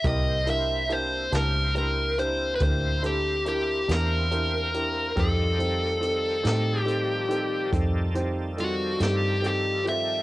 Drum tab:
HH |xxxxxxxxxxxx|xxxxxxxxxxxx|
SD |---o-----o--|---o-----o--|
BD |o-----o-----|o-----o-----|